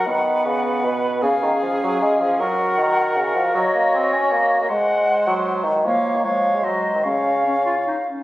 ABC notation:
X:1
M:3/4
L:1/16
Q:1/4=154
K:F#
V:1 name="Flute"
f12 | e12 | f12 | [K:Db] e12 |
g12 | f4 f4 e4 | f8- f2 z2 |]
V:2 name="Cor anglais"
B12 | G12 | A12 | [K:Db] d12 |
c12 | d4 d4 c4 | d8- d2 z2 |]
V:3 name="Clarinet"
B,12 | C12 | F12- | [K:Db] ^F12 |
A,12 | B,4 A,4 A,4 | D4 D2 F2 E2 D2 |]
V:4 name="Bassoon" clef=bass
D,4 C,4 B,,4 | C,2 D,2 E,2 F,2 G,2 E,2 | F,4 D,4 C,2 E,2 | [K:Db] G,2 B,2 C2 D2 B,3 B, |
A,6 G,4 E,2 | F,3 E, F,3 A, G,3 E, | D,8 z4 |]